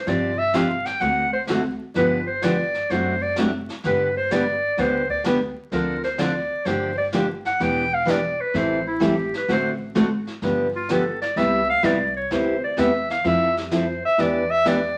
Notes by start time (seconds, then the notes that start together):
0.06 G1 C3 F3 C4 D4 G4 D5, brush sweep, snare
0.38 E5
0.53 C3 F3 C4 D4 G4 F5, snare, hi-hat pedal
0.85 G5, snare
1.00 D2 D3 A3 C4 F#4 A4 F#5, brush sweep, snare
1.33 C5
1.47 D3 A3 C4 F#4 A4, snare, hi-hat pedal
1.94 G1 D3 F3 B3 D4 G4 B4, brush sweep, snare
2.27 C5
2.42 D3 F3 B3 D4 G4 D5, snare, hi-hat pedal
2.74 snare
2.90 F#1 C3 F#3 A3 D4 F#4 C5, brush sweep, snare
3.22 D5
3.36 C3 F#3 A3 D4 F#4, snare, hi-hat pedal
3.69 snare
3.84 G1 D3 G3 B3 D4 G4 B4, brush sweep, snare
4.17 C5
4.31 D3 G3 B3 D4 G4 D5, snare, hi-hat pedal
4.77 D2 D3 G3 B3 D4 G4 C5, brush sweep, snare
5.10 D5, kick
5.24 D3 G3 B3 D4 G4, snare, hi-hat pedal
5.72 D2 D3 F3 C4 D4 A4 A#4, brush sweep, snare
6.03 C5, snare
6.18 D3 F3 C4 D4 A4 D5, snare, hi-hat pedal
6.65 G1 D3 F3 A#3 D4 G4 C5, brush sweep, snare
6.97 D5
7.12 D3 F3 A#3 D4 G4, snare, hi-hat pedal
7.45 F#5, snare
7.60 E1 E3 B3 D4 G4 G5, brush sweep, snare
7.94 F5
8.05 E3 B3 D4 G4, snare, hi-hat pedal
8.10 D5
8.40 B4
8.54 A1 E3 G3 C4 E4 A4 C5, brush sweep, snare
8.87 E4
9.00 E3 G3 C4 E4 A4, snare, hi-hat pedal
9.04 G4
9.34 B4, snare
9.48 A1 D3 A3 C4 F#4 A4 C5, brush sweep, snare
9.95 D3 A3 C4 F#4 A4, snare, hi-hat pedal
10.27 snare
10.42 G1 D3 F3 B3 D4 G4, brush sweep, snare
10.75 F4
10.89 D3 F3 B3 D4 G4 A4, snare, hi-hat pedal
11.21 D5, snare
11.36 C2 C3 G3 B3 E4 G4 E5, brush sweep, snare
11.70 F5
11.83 C2 C3 G3 B3 E4 G4 D5, snare, hi-hat pedal
12.16 C#5
12.30 D2 C3 G3 B3 E4 G4 C5, brush sweep, snare
12.63 D5
12.77 E2 C3 G3 B3 E4 G4 E5, snare, hi-hat pedal
13.10 F5, snare
13.24 F2 F3 C4 E4 A4 E5, brush sweep, snare
13.57 G4, snare
13.71 F3 C4 E4 A4 C5, snare, hi-hat pedal
14.05 E5
14.18 E2 E3 B3 D4 G4 D5, brush sweep, snare
14.50 E5
14.65 E3 B3 D4 G4 D5, snare, hi-hat pedal